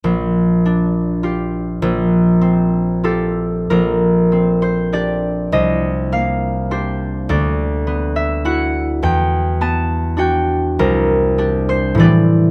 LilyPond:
\new Staff \with { instrumentName = "Harp" } { \time 3/4 \key bes \major \tempo 4 = 101 << { r2. | r2 a'4 | bes'4. c''8 d''4 | ees''4 f''4 c''4 |
d''4. e''8 fis''4 | g''4 a''4 g''4 | bes'4. c''8 d''4 | } \\ { bes,,4 d'4 <f' g'>4 | bes,,4 c'4 <f' g'>4 | bes,,4 c'4 <d' g'>4 | c,4 bes4 <d' g'>4 |
d,4 b4 <e' fis'>4 | e,4 b4 <d' fis'>4 | c,4 <d' g'>4 <a, e b g'>4 | } >> }